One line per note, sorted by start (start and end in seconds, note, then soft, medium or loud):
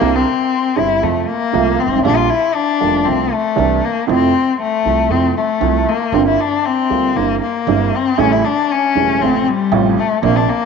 0.00 0.22 C2 medium
0.00 0.23 C2 medium
0.00 0.22 C3 medium
0.00 0.22 D3 medium
0.00 0.22 G3 medium
0.00 0.17 A#3 medium
0.00 0.22 C4 medium
0.00 0.23 E4 medium
0.15 0.80 C4 medium
0.76 0.98 G1 soft
0.76 1.00 G1 medium
0.76 0.99 G2 medium
0.76 0.99 D3 soft
0.76 0.99 G3 soft
0.76 0.99 C4 soft
0.76 0.99 E4 soft
0.76 1.05 E4 medium
1.01 1.24 F2 medium
1.01 1.25 F2 medium
1.01 1.24 C3 soft
1.01 1.24 F3 soft
1.01 1.24 A3 soft
1.01 1.30 A3 medium
1.01 1.24 F4 soft
1.28 1.81 A#3 medium
1.53 1.75 C2 medium
1.53 1.76 C2 medium
1.53 1.75 C3 medium
1.53 1.75 F3 medium
1.53 1.75 A3 medium
1.53 1.75 F4 medium
1.79 2.04 C4 medium
1.85 1.92 G1 medium
1.85 1.91 G1 soft
1.92 1.98 G#1 medium
1.92 1.99 G#1 medium
1.98 2.05 A1 medium
1.98 2.04 A1 medium
2.04 2.26 A#1 medium
2.04 2.26 A#2 medium
2.04 2.26 D3 medium
2.04 2.27 G3 medium
2.04 2.26 A#3 medium
2.04 2.18 D4 medium
2.04 2.26 F4 medium
2.16 2.31 F4 medium
2.30 2.57 E4 medium
2.55 3.06 D4 medium
2.80 3.03 F1 medium
2.80 3.02 F2 medium
2.80 3.02 D3 soft
2.80 3.02 G3 soft
2.80 3.03 A#3 soft
2.80 3.03 F4 soft
3.05 3.28 C2 soft
3.05 3.29 C2 medium
3.05 3.28 C3 medium
3.05 3.28 F3 soft
3.05 3.28 A3 soft
3.05 3.34 C4 medium
3.05 3.28 F4 soft
3.33 3.86 A3 medium
3.56 3.78 C2 medium
3.56 3.79 C2 medium
3.56 3.78 C3 medium
3.56 3.78 E3 medium
3.56 3.78 G3 medium
3.56 3.78 D4 medium
3.84 4.09 A#3 medium
4.07 4.30 F2 medium
4.07 4.31 F2 medium
4.07 4.29 C3 medium
4.07 4.30 F3 medium
4.07 4.30 A3 medium
4.07 4.57 C4 medium
4.07 4.30 E4 medium
4.62 5.12 A3 medium
4.85 5.07 C2 medium
4.85 5.07 C2 soft
4.85 5.07 C3 medium
4.85 5.07 F3 soft
4.85 5.07 A3 soft
4.85 5.07 E4 soft
5.09 5.32 F2 soft
5.09 5.32 F2 medium
5.09 5.32 C3 soft
5.09 5.32 F3 soft
5.09 5.32 A3 soft
5.09 5.37 C4 medium
5.09 5.32 E4 soft
5.37 5.90 A3 medium
5.60 5.83 C2 medium
5.60 5.84 C3 medium
5.60 5.83 F3 medium
5.60 5.83 A3 medium
5.60 5.83 E4 medium
5.88 6.15 A#3 medium
6.12 6.35 G1 medium
6.12 6.35 G2 medium
6.12 6.35 D3 medium
6.12 6.35 G3 medium
6.12 6.36 A#3 medium
6.12 6.27 C4 medium
6.12 6.36 F4 medium
6.28 6.42 E4 medium
6.41 6.67 D4 medium
6.66 7.18 C4 medium
6.90 7.12 D2 soft
6.90 7.13 D2 medium
6.90 7.13 D3 soft
6.90 7.12 G3 soft
6.90 7.12 A#3 soft
6.90 7.13 F4 soft
7.16 7.38 G1 medium
7.16 7.39 G1 soft
7.16 7.39 G2 soft
7.16 7.39 D3 soft
7.16 7.39 G3 soft
7.16 7.41 A#3 medium
7.16 7.39 C4 soft
7.16 7.39 E4 soft
7.42 7.97 A#3 medium
7.67 7.89 G1 medium
7.67 7.89 G2 medium
7.67 7.89 D3 medium
7.67 7.90 G3 medium
7.67 7.90 C4 medium
7.67 7.90 E4 medium
7.95 8.21 C4 medium
8.18 8.40 A1 medium
8.18 8.40 A2 medium
8.18 8.40 C#3 medium
8.18 8.40 G3 medium
8.18 8.40 A3 medium
8.18 8.33 C#4 medium
8.18 8.40 E4 medium
8.32 8.46 E4 medium
8.45 8.73 D4 medium
8.72 9.23 C#4 medium
8.95 9.17 E1 medium
8.95 9.17 E2 medium
8.95 9.17 C#3 soft
8.95 9.17 G3 soft
8.95 9.17 A3 soft
8.95 9.17 E4 soft
9.21 9.42 A1 medium
9.21 9.44 A1 medium
9.21 9.43 A2 soft
9.21 9.43 C3 soft
9.21 9.43 F3 soft
9.21 9.44 A3 soft
9.21 9.49 C4 medium
9.21 9.44 F4 soft
9.48 10.00 G3 medium
9.72 9.93 A1 medium
9.72 9.94 A1 medium
9.72 9.94 A2 medium
9.72 9.94 C3 medium
9.72 9.94 F3 medium
9.72 9.94 A3 medium
9.72 9.94 F4 medium
9.99 10.23 A3 medium
10.22 10.44 A#1 medium
10.22 10.44 A#2 medium
10.22 10.44 C3 medium
10.22 10.44 F3 medium
10.22 10.44 A#3 medium
10.22 10.38 A#3 medium
10.22 10.44 D4 medium
10.36 10.51 D4 medium
10.49 10.65 A#3 medium